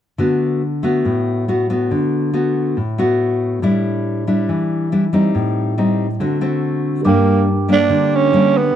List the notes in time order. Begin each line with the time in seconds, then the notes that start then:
0.18 D3 A3 B3 F#4
0.83 A3 B3 F#4
1.05 A2
1.48 A3 B3 F#4
1.70 A3 B3 F#4
1.91 D3
2.33 A3 B3 F#4
2.77 A2
2.98 A3 B3 F#4
3.62 A2 G3 D4 E4
4.27 G3 D4 E4
4.49 E3
4.92 G3 D4 E4
5.13 G3 C4 D#4
5.35 A2
5.78 G3 C4 D#4
6.20 D3 A3 C4 F#4
6.41 A3 C4 F#4
7.01 G2 G3 A#3 G4 A#4 D6
7.05 A#3 D4 G5
7.68 G3 A#3 D4
7.90 D3
8.15 C#4
8.33 G3 A#3 D4
8.57 B3